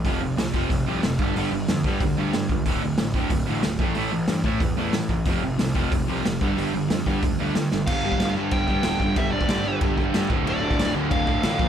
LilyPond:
<<
  \new Staff \with { instrumentName = "Lead electric guitar" } { \time 4/4 \key g \dorian \tempo 4 = 184 r1 | r1 | r1 | r1 |
r1 | r1 | f''4. r8 g''2 | e''8 d''4. r2 |
d''4. r8 f''2 | }
  \new Staff \with { instrumentName = "Distorted electric guitar" } { \clef bass \time 4/4 \key g \dorian <f, c f>8 <f, c>8 <f, c>8 <f, c f>8 <f, c>8 <f, c f>8 <f, c>8 <g, d g>8 | <g, d g>8 <g, d>8 <g, d>8 <g, d g>8 <g, d>8 <g, d g>8 <g, d>8 <g, d>8 | <d, a, d>8 <d, a,>8 <d, a,>8 <d, a, d>8 <d, a,>8 <d, a, d>8 <d, a,>8 <a, e a>8 | <a, e a>8 <a, e>8 <a, e>8 <a, e a>8 <a, e>8 <a, e a>8 <a, e>8 <a, e>8 |
<f, c f>8 <f, c>8 <f, c>8 <f, c f>8 <f, c>8 <f, c f>8 <f, c>8 <g, d g>8 | <g, d g>8 <g, d>8 <g, d>8 <g, d g>8 <g, d>8 <g, d g>8 <g, d>8 <g, d>8 | <g, d g>8 <g, d g>8 <g, d g>8 <g, d g>8 <g, d g>8 <g, d g>8 <g, d g>8 <g, d g>8 | <g, d g>8 <g, d g>8 <g, d g>8 <g, d g>8 <g, d g>8 <g, d g>8 <g, d g>8 <d, a, d>8 |
<d, a, d>8 <d, a, d>8 <d, a, d>8 <d, a, d>8 <d, a, d>8 <d, a, d>8 <d, a, d>8 <bes, f bes>8 | }
  \new Staff \with { instrumentName = "Overdriven electric guitar" } { \clef bass \time 4/4 \key g \dorian <f, c f>8 <f, c>8 <f, c>8 <f, c f>8 <f, c>8 <f, c f>8 <f, c>8 <g, d g>8 | <g, d g>8 <g, d>8 <g, d>8 <g, d g>8 <g, d>8 <g, d g>8 <g, d>8 <g, d>8 | <d, a, d>8 <d, a,>8 <d, a,>8 <d, a, d>8 <d, a,>8 <d, a, d>8 <d, a,>8 <a, e a>8 | <a, e a>8 <a, e>8 <a, e>8 <a, e a>8 <a, e>8 <a, e a>8 <a, e>8 <a, e>8 |
<f, c f>8 <f, c>8 <f, c>8 <f, c f>8 <f, c>8 <f, c f>8 <f, c>8 <g, d g>8 | <g, d g>8 <g, d>8 <g, d>8 <g, d g>8 <g, d>8 <g, d g>8 <g, d>8 <g, d>8 | <g, d g>8 <g, d g>8 <g, d g>8 <g, d g>8 <g, d g>8 <g, d g>8 <g, d g>8 <g, d g>8 | <g, d g>8 <g, d g>8 <g, d g>8 <g, d g>8 <g, d g>8 <g, d g>8 <g, d g>8 <d, a, d>8 |
<d, a, d>8 <d, a, d>8 <d, a, d>8 <d, a, d>8 <d, a, d>8 <d, a, d>8 <d, a, d>8 <bes, f bes>8 | }
  \new Staff \with { instrumentName = "Overdriven electric guitar" } { \clef bass \time 4/4 \key g \dorian r1 | r1 | r1 | r1 |
r1 | r1 | r1 | r1 |
<d, a, d>8 <d, a, d>8 <d, a, d>8 <d, a, d>8 <d, a, d>8 <d, a, d>8 <d, a, d>8 <bes, f bes>8 | }
  \new Staff \with { instrumentName = "Picked electric bass" } { \clef bass \time 4/4 \key g \dorian f,,8 f,,8 c,8 f,,8 f,,8 c,8 f,,8 g,,8 | g,,8 g,,8 f,8 g,8 d,8 d,8 g,8 cis,8 | d,,8 d,,8 a,,8 d,,8 d,,8 a,,8 d,,8 a,,8 | a,,8 a,,8 g,8 a,8 e,8 e,8 a,8 a,,8 |
f,,8 f,,8 c,8 f,,8 f,,8 c,8 f,,8 g,,8 | g,,8 g,,8 f,8 g,8 d,8 d,8 g,8 g,,8 | g,,4 g,,8 g,8 g,,8 g,8 d,,8 g,,8 | g,,8 g,,8 g,,4 g,,4 g,8 d,,8 |
d,,4 d,,8 d,8 d,,8 d,8 a,,8 bes,,8 | }
  \new DrumStaff \with { instrumentName = "Drums" } \drummode { \time 4/4 <hho bd>4 <hho sn>8 bd8 <hho bd>4 <hho sn>8 bd8 | hho4 <hho sn>8 bd8 <hho bd>4 <hho sn>8 bd8 | <hho bd>4 <hho sn>8 bd8 <hho bd>4 <hho sn>8 bd8 | hho4 <hho sn>8 bd8 <hho bd>4 <hho sn>8 bd8 |
<hho bd>4 <hho sn>8 bd8 <hho bd>4 <hho sn>8 bd8 | hho4 <hho sn>8 bd8 <hho bd>4 <hho sn>8 sn8 | <cymc bd>8. bd16 <cymc sn>4 <cymc bd>8 bd8 <cymc sn>8 bd8 | <cymc bd>8. bd16 <cymc sn>4 <cymc bd>8 bd8 <cymc sn>8 bd8 |
cymc8. bd16 <cymc sn>4 <cymc bd>8 bd8 <cymc sn>8 bd8 | }
>>